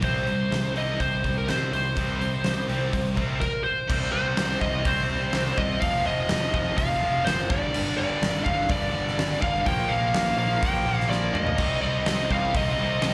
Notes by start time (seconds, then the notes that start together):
0.01 C2 C3 G3 C4 D#4 C5, kick, open hi-hat
0.26 C2 C3 G3, open hi-hat
0.51 C2 C3 G3, snare, open hi-hat
0.76 C3 G3 C4 D#5, open hi-hat
1.00 C2 C3 G3 C5, kick, open hi-hat
1.24 C2 C3 G3, kick, open hi-hat
1.38 A#4
1.47 C3 G3 C4 C5, snare, open hi-hat
1.73 C2 C3 G3 C5, open hi-hat
1.97 C2 C3 G3 C4 D#4, kick, open hi-hat
2.21 C3 G3, open hi-hat
2.44 C2 C3 G3, snare, open hi-hat
2.68 C2 C3 G3 C4, open hi-hat
2.93 C2 C3 G3, kick, open hi-hat
3.16 C2 C3 G3 C4, kick, open hi-hat
3.40 A#4, kick, crash
3.64 C5
3.90 C2 C3 G3 C4, kick, crash
4.12 C2 C3 G3 C4 C5
4.37 C2 C3 G3 C4, snare, open hi-hat
4.61 C2 C3 G3 C4 D#5, kick
4.85 C2 C3 G3 C4 C5, kick, open hi-hat
5.10 C2 C3 G3 C4
5.33 C2 C3 G3 C4, snare, open hi-hat
5.58 C2 C3 G3 C4 D#5, kick
5.81 F1 F2 C3 F3 F5, kick, open hi-hat
6.05 F1 F2 C3 F3 D#5
6.29 F1 F2 C3 F3, snare, open hi-hat
6.53 F1 F2 C3 F3 D#5, kick
6.78 F1 F2 C3 F3 F5, kick, open hi-hat
7.01 F1 F2 C3 F3
7.25 F#1 F2 C3 F3 C5, snare, open hi-hat
7.49 G1 G2 D3 G3 D5, kick
7.74 G1 G2 D3 G3, crash
7.98 G1 G2 D3 G3 D5
8.22 G1 G2 D3 G3, snare, open hi-hat
8.44 G1 G2 D3 G3 F5, kick
8.69 G1 G2 D3 G3 D5, kick, open hi-hat
8.93 G1 G2 D3 G3
9.07 snare
9.18 G1 G2 D3 G3, snare, open hi-hat
9.42 G1 G2 D3 G3 F5, kick
9.66 A#1 A#2 F3 A#3 G5, kick, open hi-hat
9.88 A#1 A#2 F3 A#3 F5
9.92 A#2 F3 A#3
10.14 A#1 A#2 F3 A#3, snare, open hi-hat
10.37 A#1 A#2 F3 A#3 F5
10.61 A#1 A#2 F3 A#3 G5, kick, open hi-hat
10.85 A#1 A#2 F3 A#3
11.00 snare
11.09 A#1 A#2 F3 D5, snare
11.13 A#3
11.33 D2 A#2 F3 A#3 D#5, mid tom
11.47 floor tom
11.58 C2 C3 G3 C4 D#4, kick, crash
11.81 C2 C3 G3 C4 D#5
12.06 C2 C3 G3 C4, snare, open hi-hat
12.30 C2 C3 G3 C4 F5, kick
12.54 C2 C3 G3 C4 D#5, kick, open hi-hat
12.78 C2 C3 G3 C4 D#4
13.02 C2 C3 G3 C4 D#4 D#5, snare, open hi-hat